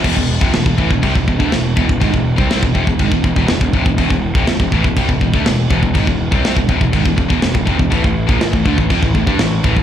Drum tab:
CC |x---x---x---x---|x---x---x---x---|x---x---x---x---|x---x---x---x---|
SD |----o-------o---|----o-------o---|----o-------o---|----o-------o---|
BD |oo-o-ooooooo--oo|oo-o-ooooooo-ooo|oo-o-ooooooo--oo|oo-o-ooooooo-ooo|

CC |x---x---x---x---|
SD |----o-------o---|
BD |oo-o-ooooooo--oo|